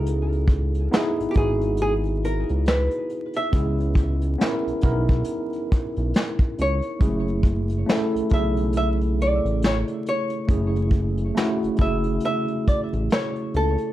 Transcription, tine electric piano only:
X:1
M:4/4
L:1/16
Q:"Swing 16ths" 1/4=69
K:F#m
V:1 name="Tine electric piano"
[B,^DEG]2 z2 [B,DEG]2 [B,DEF]6 z4 | [B,CEG]3 z [B,CE^A]2 [B,^DEA]6 z4 | [G,A,CEG]3 z [A,CEA]2 [C,A,EG]6 z4 | [A,CEG]3 z [A,CEF]2 [C,A,EG]6 z4 |]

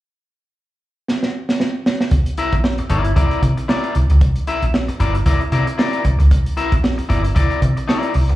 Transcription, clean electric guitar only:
X:1
M:4/4
L:1/16
Q:"Swing 16ths" 1/4=115
K:Cmix
V:1 name="Clean electric guitar"
z16 | z2 [EBe] z3 [EBd]2 [EBd]2 z2 [EBd]2 z2 | z2 [EBe] z3 [EBd] z [EBd] z [EBd]2 [EBd]2 z2 | z2 [EBe] z3 [EBd] z [EBd]2 z2 [EBd]2 z2 |]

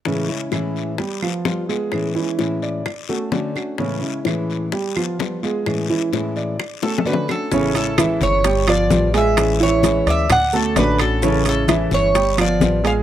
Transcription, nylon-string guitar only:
X:1
M:4/4
L:1/8
Q:1/4=129
K:A
V:1 name="Nylon-string guitar"
[A,,E,G,CE] [G,CE] [A,,E,G,CE]2 z [B,=F] [=G,B,F] [B,F] | [A,,E,G,CE] [G,CE] [A,,E,G,CE]2 z [A,CF] [D,A,CF] [A,CF] | [A,,E,G,CE] [G,CE] [A,,E,G,CE]2 z [B,=F] [=G,B,F] [B,F] | [A,,E,G,CE] [G,CE] [A,,E,G,CE]2 z [A,CF] [D,A,CF] [A,CF] |
[E,G,CE] [G,CE] [E,G,CE]2 z [B,=F] [=G,B,F] [B,F] | [E,G,CE] [G,CE] [E,G,CE]2 z [A,CF] [D,A,CF] [A,CF] | [E,G,CE] [G,CE] [E,G,CE]2 z [B,=F] [=G,B,F] [B,F] |]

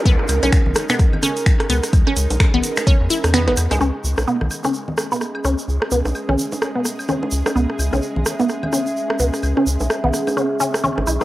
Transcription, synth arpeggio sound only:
X:1
M:4/4
L:1/16
Q:"Swing 16ths" 1/4=128
K:C#dor
V:1 name="Synth arpeggio sound"
B, z2 C z3 B, z2 C z3 B, z | z C z3 B, z2 C z E z B, B, z G, | C z3 B, z2 C z3 B, z2 C z | z2 B, z2 C z3 B, z2 C z3 |
B, z2 C z3 B, z2 C z3 B, z | z C z3 B, z2 C z C z C z E D |]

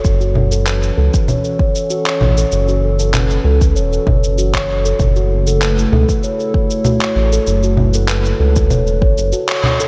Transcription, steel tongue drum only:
X:1
M:4/4
L:1/16
Q:"Swing 16ths" 1/4=97
K:F#m
V:1 name="Steel tongue drum"
z F z A B2 A2 c2 c z F c z A | z F z A z2 A2 c2 c z F c z A | z F z A B2 A2 c2 c z F c z A | z F z A B2 A2 c2 c z F c z A |]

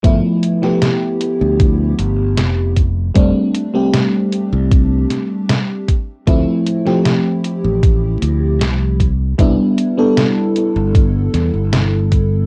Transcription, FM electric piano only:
X:1
M:4/4
L:1/16
Q:1/4=77
K:Gmix
V:1 name="FM electric piano"
[F,A,B,E]3 [F,A,B,G] z12 | [G,A,CD]3 [G,A,CG] z12 | [F,A,CE]3 [F,A,CG] z12 | [G,B,DE]3 [G,B,DA] z12 |]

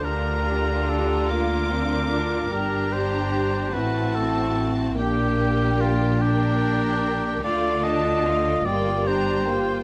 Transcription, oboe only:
X:1
M:6/8
L:1/8
Q:3/8=49
K:Gm
V:1 name="Oboe"
B2 A B3 | B c2 _c A z | G2 F G3 | d e2 d c2 |]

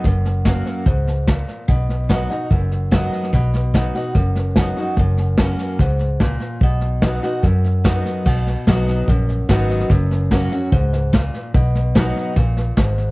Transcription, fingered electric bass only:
X:1
M:4/4
L:1/8
Q:1/4=146
K:B
V:1 name="Fingered electric bass" clef=bass
F,,,4 C,,4 | B,,,4 F,,,4 | B,,,4 F,,,4 | F,,,4 C,,4 |
B,,,4 F,,4 | B,,,2 B,,,2 A,,,2 G,,,2 | F,,,4 C,,4 | B,,,4 A,,,2 G,,,2 |]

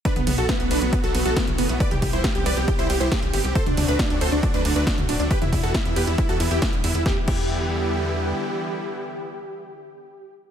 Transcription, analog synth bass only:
X:1
M:4/4
L:1/16
Q:1/4=137
K:Em
V:1 name="Analog synth bass" clef=bass
z B,,, B,,, B,,, z B,,, B,,, B,,, z B,,, B,,, B,,, z B,,, F,,, B,,, | z C,, C,, C,, z C,, C,, C,, z C,, C,, C,, z C,, G,,, C,, | z D,, D,, D,, z D,, D,, D,, z D,, D,, D,, z D,, D,,, D,, | z E,, E,, E,, z E,, E,, E,, z E,, E,, E,, z E,,, E,, E,, |
E,, z E,,8- E,,2 z4 | z16 |]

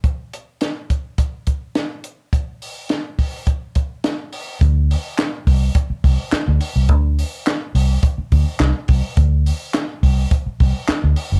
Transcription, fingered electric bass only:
X:1
M:4/4
L:1/16
Q:1/4=105
K:Dmix
V:1 name="Fingered electric bass" clef=bass
z16 | z16 | D,,3 z3 C,,2 z2 C,, z2 D,, z C,, | D,,3 z3 C,,2 z2 D,, z C,, z C,, z |
D,,3 z3 C,,2 z2 C,, z2 D,, z F,,, |]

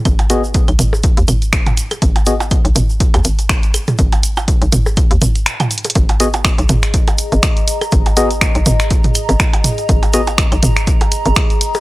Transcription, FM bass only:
X:1
M:4/4
L:1/16
Q:"Swing 16ths" 1/4=122
K:G#m
V:1 name="FM bass" clef=bass
G,,,4 z B,,, G,,,2 z D,, G,,,4 z2 | G,,,4 z B,,, G,,,2 z D,, G,,,4 z2 | G,,,4 z B,,, G,,,2 z D,, G,,,2 z4 | G,,,4 z B,,, G,,,2 z3 G,,, z4 |
G,,,4 z B,,, G,,,2 z3 G,,, z4 | G,,,4 z B,,, G,,,2 z3 G,,, z4 |]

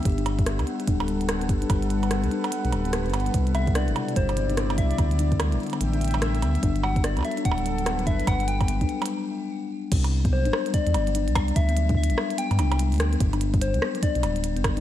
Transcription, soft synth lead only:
X:1
M:4/4
L:1/8
Q:"Swing 16ths" 1/4=146
K:G
V:1 name="Soft synth lead"
z8 | z8 | z e d2 c3 e- | e z6 z |
z f d e f3 e | f g4 z3 | z2 c2 d4 | e2 e2 g2 z2 |
z2 c2 d4 |]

